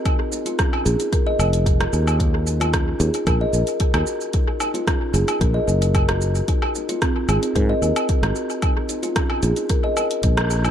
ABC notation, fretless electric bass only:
X:1
M:4/4
L:1/16
Q:1/4=112
K:Bbm
V:1 name="Fretless electric bass" clef=bass
z6 B,,, z3 F,,,3 z E,,2- | E,,4- E,, z E,, z B,,, z B,,, z2 E,, z2 | z6 G,,, z B,,, z G,,,4- G,,, z | z6 A,,, z A,, z E,, z2 A,,, z2 |
z6 B,,, z4 z B,,,3 z |]